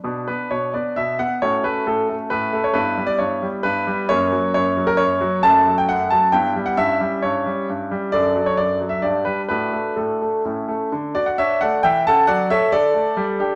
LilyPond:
<<
  \new Staff \with { instrumentName = "Grand piano" } { \time 3/4 \key b \minor \tempo 4 = 134 << { r8 b'8 cis''8 d''8 e''8 fis''8 | cis''8 b'8 a'4 b'8. cis''16 | b'8. d''16 cis''4 b'4 | cis''4 cis''8. ais'16 cis''4 |
\key d \major a''8. g''16 fis''8 a''8 g''8. fis''16 | e''4 cis''4 r4 | d''8. cis''16 d''8. e''16 d''8 b'8 | b'4 a'4 r4 |
r8 d''16 fis''16 <cis'' e''>8 <d'' fis''>8 <e'' g''>8 <fis'' a''>8 | <d'' fis''>8 <cis'' e''>8 <a' d''>2 | } \\ { <b d'>2. | <cis' fis'>2. | <b e'>2. | <ais cis'>2. |
<a cis'>2 <b e'>4 | <cis' e'>2. | <d' a'>2 <d' g'>4 | <d' fis'>2 <cis' e'>4 |
r2. | r2. | } >> }
  \new Staff \with { instrumentName = "Grand piano" } { \clef bass \time 3/4 \key b \minor b,8 b8 b,8 b8 b,8 b8 | a,8 a8 a,8 a8 a,8 a8 | g,8 g8 g,8 g8 g,8 g8 | fis,8 fis8 fis,8 fis8 fis,8 fis8 |
\key d \major fis,8 fis8 fis,8 fis8 g,8 g8 | g,8 g8 g,8 g8 g,8 g8 | fis,8 fis8 fis,8 fis8 g,8 g8 | a,8 a8 a,8 a8 a,8 a8 |
d8 fis'8 d'8 a8 e8 <cis' a'>8 | fis8 a'8 d'8 a8 g8 <d' g'>8 | }
>>